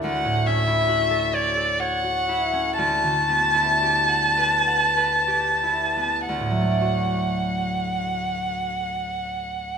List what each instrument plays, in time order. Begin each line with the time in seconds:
Already playing: harp D4 E4 D5
0.04 harp D2, violin F#5
0.25 harp A2
0.46 harp C#4, violin E5
0.67 harp E4
0.88 harp F#4
1.10 harp A4
1.33 harp C#5, violin D5
1.57 harp A4
1.80 harp C#5, violin F#5
2.04 harp F#4
2.29 harp E4
2.53 harp C#4
2.78 harp D2, violin A5
3.03 harp D3
3.29 harp B3
3.54 harp E4
3.82 harp G4
4.09 harp F#5
4.37 harp B4
4.67 harp F#5
4.97 harp B4
5.28 harp G4
5.63 harp E4
5.96 harp B3
6.29 harp D2, violin F#5
6.40 harp A2
6.51 harp F#3
6.61 harp A3
6.71 harp D4
6.81 harp F#4